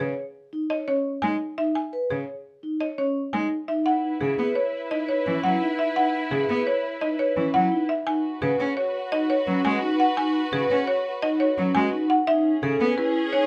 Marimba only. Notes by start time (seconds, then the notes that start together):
0.00 G#4
0.70 D#5
0.88 C#5
1.22 G#5
1.58 E5
1.75 G#5
2.10 G#4
2.81 D#5
2.98 C#5
3.33 G#5
3.68 E5
3.86 F#5
4.21 G#4
4.55 C#5
4.91 D#5
5.09 C#5
5.44 F#5
5.79 E5
5.96 F#5
6.31 G#4
6.67 C#5
7.01 D#5
7.19 C#5
7.54 F#5
7.89 E5
8.07 G#5
8.42 G#4
8.77 C#5
9.12 D#5
9.30 C#5
9.65 G#5
10.00 F#5
10.17 G#5
10.53 G#4
10.87 C#5
11.22 D#5
11.40 C#5
11.75 G#5
12.10 F#5
12.27 E5
12.63 G#4
12.98 B4
13.33 C#5